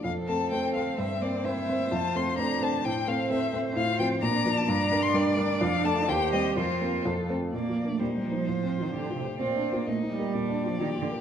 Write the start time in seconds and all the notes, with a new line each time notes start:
0.04 F2 C4 A4 F5
0.28 A3 C4 A4 A5
0.51 A3 C4 A4 G5
0.74 A3 C4 A4 F5
0.98 G2 C5 E5
1.22 A#3 C4 C5 D5
1.45 A#3 C4 E4 C5 E5
1.69 A#3 C4 C5
1.91 F2 F4 A5
2.15 A3 C4 C5 C6
2.38 A3 C4 D4 C5 A#5
2.62 A3 C4 C5 A5
2.84 A2 C4 C5 G5
3.07 A3 C4 C5 F5
3.30 A3 C4 C5 E5
3.53 A3 C4 C5
3.76 A2 F4 F5
3.99 F3 C4 C5 G5
4.22 A#2 D4 D5 A#5
4.45 F3 D4 A#4
4.57 A5
4.68 G2 D4 A#5
4.92 G3 D4 A#4
5.03 C6
5.14 G3 D4 A#4 D5
5.37 G3 D4 A#4
5.61 F2 F5
5.84 A3 D4 A4 A5
6.08 D#2 G4 C5 G5
6.33 G3 C4 C5 D#5
6.57 F2 F4 A#4 C5
6.81 A#3 C4 C5
7.05 F2 A4
7.30 A3 C4 C5
7.53 A#2 A#3 D5
7.69 F3
7.85 A3 D4 A#4
8.00 A#2 G3 D#4 C5
8.17 G3
8.22 F3
8.32 D#4 C5
8.47 A2 F4
8.63 C4
8.78 D#3 F4
8.93 D3 A3 G4
9.10 F4
9.16 C3
9.26 C5
9.40 A#2 C4 F4 D5
9.56 D4
9.72 A#3 F4 A#4
9.87 A#2 A3 D#4 D#5
10.03 D#4
10.11 G3
10.19 G4 A#4
10.33 A#2 D4 D5
10.50 D4
10.65 F3 F4
10.80 D#3 F3 G4
10.96 F4
11.01 D3
11.12 A#4